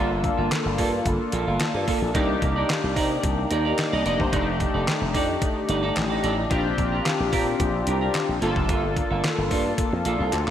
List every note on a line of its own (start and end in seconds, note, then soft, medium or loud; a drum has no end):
0.00 0.28 G1 loud
0.00 0.13 A#3 medium
0.00 2.10 A#3 medium
0.00 2.10 D4 medium
0.00 0.10 F4 medium
0.00 2.11 F4 medium
0.00 2.11 A4 medium
0.10 muted clean electric guitar stroke soft
0.23 muted clean electric guitar stroke soft
0.23 kick medium
0.23 closed hi-hat medium
0.37 0.48 G1 medium
0.37 0.50 A#3 medium
0.37 0.50 F4 medium
0.37 0.49 A4 medium
0.51 snare loud
0.51 clap medium
0.51 closed hi-hat medium
0.65 0.75 G1 medium
0.65 muted clean electric guitar stroke soft
0.78 0.99 G2 loud
0.78 0.94 A#3 medium
0.78 0.92 F4 medium
0.78 0.91 A4 medium
0.78 kick medium
0.78 open hi-hat medium
0.92 muted clean electric guitar stroke soft
1.05 1.17 G1 medium
1.05 muted clean electric guitar stroke soft
1.05 kick loud
1.05 closed hi-hat loud
1.20 muted clean electric guitar stroke medium
1.32 1.44 A#1 loud
1.32 1.47 A#3 medium
1.32 1.47 F4 medium
1.32 1.46 A4 medium
1.32 closed hi-hat medium
1.47 1.57 G1 medium
1.47 1.59 A#3 medium
1.47 1.59 F4 medium
1.47 1.59 A4 medium
1.60 muted clean electric guitar stroke soft
1.60 snare loud
1.60 clap medium
1.60 closed hi-hat medium
1.74 1.84 G2 medium
1.74 1.86 A#3 medium
1.74 1.86 F4 medium
1.74 1.86 A4 medium
1.87 2.04 A#3 medium
1.87 2.02 F4 medium
1.87 2.01 A4 loud
1.87 kick medium
1.87 open hi-hat medium
2.02 2.12 A#1 medium
2.02 muted clean electric guitar stroke soft
2.14 2.36 C2 loud
2.14 4.29 A#3 medium
2.14 4.29 D4 medium
2.14 2.31 D#4 medium
2.14 4.29 D#4 medium
2.14 4.29 G4 medium
2.14 2.29 A#4 loud
2.14 2.28 D5 medium
2.14 kick loud
2.14 closed hi-hat medium
2.29 muted clean electric guitar stroke medium
2.42 2.63 C2 medium
2.42 muted clean electric guitar stroke soft
2.42 kick medium
2.42 closed hi-hat medium
2.56 2.69 D#4 medium
2.56 2.68 A#4 medium
2.56 2.68 D5 medium
2.70 snare loud
2.70 clap medium
2.70 closed hi-hat medium
2.83 2.94 C2 medium
2.83 muted clean electric guitar stroke soft
2.96 3.17 C3 medium
2.96 3.13 D#4 medium
2.96 3.10 A#4 medium
2.96 3.09 D5 medium
2.96 kick medium
2.96 open hi-hat medium
3.11 muted clean electric guitar stroke soft
3.24 3.44 C2 medium
3.24 muted clean electric guitar stroke soft
3.24 kick loud
3.24 closed hi-hat medium
3.38 muted clean electric guitar stroke soft
3.51 3.72 D#2 medium
3.51 3.65 D#4 medium
3.51 3.65 A#4 medium
3.51 3.64 D5 medium
3.51 closed hi-hat loud
3.65 3.77 D#4 medium
3.65 3.77 A#4 medium
3.65 3.77 D5 medium
3.78 3.92 F5 medium
3.78 muted clean electric guitar stroke soft
3.78 snare loud
3.78 clap medium
3.78 closed hi-hat medium
3.92 4.03 C2 medium
3.92 4.04 D#4 medium
3.92 4.05 A#4 medium
3.92 4.04 D5 medium
3.92 4.19 D#5 medium
4.05 4.16 F1 loud
4.05 4.22 D#4 medium
4.05 4.20 A#4 medium
4.05 4.19 D5 medium
4.05 closed hi-hat medium
4.20 4.30 G1 medium
4.20 4.46 C5 medium
4.20 muted clean electric guitar stroke medium
4.20 kick medium
4.32 4.65 F1 medium
4.32 6.47 A3 medium
4.32 6.47 D4 medium
4.32 4.49 D#4 medium
4.32 6.47 D#4 medium
4.32 6.47 G4 medium
4.32 4.47 A4 medium
4.32 4.46 D5 medium
4.32 kick loud
4.32 closed hi-hat medium
4.47 muted clean electric guitar stroke soft
4.60 muted clean electric guitar stroke soft
4.60 kick medium
4.60 closed hi-hat medium
4.74 4.84 F1 medium
4.74 4.87 D#4 medium
4.74 4.86 A4 medium
4.74 4.86 D5 medium
4.88 snare loud
4.88 clap medium
4.88 closed hi-hat medium
5.01 5.11 F1 loud
5.01 muted clean electric guitar stroke soft
5.14 5.35 F2 medium
5.14 5.31 D#4 medium
5.14 5.29 A4 medium
5.14 5.27 D5 medium
5.14 kick medium
5.14 open hi-hat medium
5.29 muted clean electric guitar stroke medium
5.42 muted clean electric guitar stroke soft
5.42 kick loud
5.42 closed hi-hat loud
5.56 muted clean electric guitar stroke soft
5.68 5.90 G1 medium
5.68 5.83 D#4 medium
5.68 5.82 A4 medium
5.68 5.82 D5 medium
5.68 closed hi-hat medium
5.83 5.94 D#4 medium
5.83 5.95 A4 medium
5.83 5.95 D5 medium
5.96 6.17 A1 medium
5.96 muted clean electric guitar stroke soft
5.96 snare medium
5.96 clap medium
5.96 closed hi-hat medium
6.10 6.22 D#4 medium
6.10 6.22 A4 medium
6.10 6.22 D5 medium
6.23 6.44 A1 loud
6.23 6.40 D#4 medium
6.23 6.37 A4 medium
6.23 6.36 D5 medium
6.23 closed hi-hat medium
6.37 muted clean electric guitar stroke soft
6.50 6.72 A#1 loud
6.50 8.38 C4 medium
6.50 6.67 D4 medium
6.50 8.38 D4 medium
6.50 8.38 F4 medium
6.50 6.65 G4 medium
6.50 8.38 G4 loud
6.50 6.64 A#4 medium
6.50 kick loud
6.50 closed hi-hat medium
6.65 muted clean electric guitar stroke medium
6.78 6.99 A#1 medium
6.78 muted clean electric guitar stroke soft
6.78 kick medium
6.78 closed hi-hat medium
6.92 7.05 D4 soft
6.92 7.04 G4 medium
6.92 7.04 A#4 medium
7.06 snare medium
7.06 clap medium
7.06 closed hi-hat medium
7.20 7.30 A#1 medium
7.20 muted clean electric guitar stroke soft
7.32 7.54 A#2 medium
7.32 7.49 D4 medium
7.32 7.47 G4 medium
7.32 7.46 A#4 medium
7.32 kick medium
7.32 open hi-hat medium
7.47 muted clean electric guitar stroke soft
7.60 7.81 A#1 medium
7.60 muted clean electric guitar stroke soft
7.60 kick loud
7.60 closed hi-hat loud
7.74 muted clean electric guitar stroke soft
7.87 8.08 C2 loud
7.87 8.02 D4 medium
7.87 8.01 G4 medium
7.87 8.00 A#4 medium
7.87 closed hi-hat loud
8.01 8.14 D4 soft
8.01 8.14 G4 medium
8.01 8.13 A#4 medium
8.14 snare medium
8.14 clap medium
8.14 closed hi-hat medium
8.29 8.39 A#1 medium
8.29 muted clean electric guitar stroke soft
8.41 8.53 G1 loud
8.41 10.50 A#3 medium
8.41 8.58 A#3 medium
8.41 10.50 D4 medium
8.41 8.56 F4 loud
8.41 10.50 F4 medium
8.41 8.55 A4 loud
8.41 10.50 A4 medium
8.41 closed hi-hat medium
8.56 8.66 F1 medium
8.56 muted clean electric guitar stroke soft
8.56 kick loud
8.69 9.01 G1 medium
8.69 8.85 A#3 medium
8.69 8.83 F4 medium
8.69 8.82 A4 medium
8.69 kick loud
8.69 closed hi-hat medium
8.83 muted clean electric guitar stroke soft
8.96 muted clean electric guitar stroke soft
8.96 kick medium
8.96 closed hi-hat medium
9.11 9.21 G1 medium
9.11 9.23 A#3 medium
9.11 9.23 F4 medium
9.11 9.22 A4 medium
9.24 snare loud
9.24 clap medium
9.24 closed hi-hat medium
9.38 9.48 G1 medium
9.38 muted clean electric guitar stroke soft
9.51 9.72 G2 medium
9.51 9.67 A#3 medium
9.51 9.65 F4 medium
9.51 9.64 A4 medium
9.51 kick medium
9.51 open hi-hat medium
9.65 muted clean electric guitar stroke soft
9.78 muted clean electric guitar stroke soft
9.78 kick loud
9.78 closed hi-hat medium
9.93 10.03 F2 medium
9.93 muted clean electric guitar stroke medium
10.05 10.17 A#1 medium
10.05 10.20 A#3 medium
10.05 10.19 F4 medium
10.05 10.18 A4 medium
10.05 closed hi-hat medium
10.20 10.30 C2 medium
10.20 10.31 A#3 soft
10.20 10.32 F4 medium
10.20 10.31 A4 medium
10.32 10.44 D2 medium
10.32 muted clean electric guitar stroke soft
10.32 clap medium
10.32 closed hi-hat medium
10.47 10.50 A4 medium